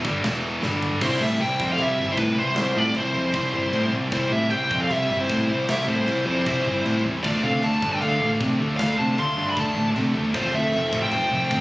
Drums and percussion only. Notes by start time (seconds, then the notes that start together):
0.05 kick
0.24 snare, crash
0.63 snare
0.82 floor tom
1.01 kick, crash
1.40 crash
1.60 kick
1.78 crash
2.17 kick, crash
2.56 snare, crash
2.95 crash
3.33 kick, crash
3.73 crash
4.12 kick, crash
4.51 crash
4.71 kick
4.91 crash
5.30 kick, crash
5.69 snare, crash
6.08 crash
6.46 kick, crash
6.86 crash
7.24 kick, crash
7.63 crash
7.82 kick
8.02 crash
8.40 kick, crash
8.79 snare, crash
9.18 crash
9.57 kick, crash
9.96 crash
10.34 kick, crash
10.73 crash
10.93 kick
11.11 crash
11.51 kick, crash